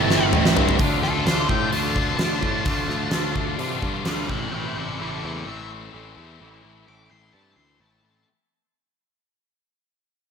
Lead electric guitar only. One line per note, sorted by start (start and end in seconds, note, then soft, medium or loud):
0.00 0.30 A5 loud
1.03 1.25 A4 medium
1.28 1.49 C5 medium
1.49 1.71 G5 medium
1.72 2.16 A5 medium
2.17 3.54 A5 medium
4.06 4.29 D5 medium
4.06 4.29 G5 medium
4.31 4.52 E5 medium
4.31 4.53 G5 medium
4.53 4.74 E5 medium
4.53 4.76 G5 medium
4.78 4.99 C5 medium
4.78 5.00 E5 medium
5.02 5.22 C5 medium
5.02 5.23 E5 medium
5.26 5.46 C5 medium
5.26 5.47 E5 medium
5.48 5.70 E5 medium
6.88 7.10 D6 medium
7.11 7.33 C6 medium
7.33 7.56 A5 medium
7.56 7.79 C6 medium
7.81 8.03 A5 medium
8.05 8.27 A5 medium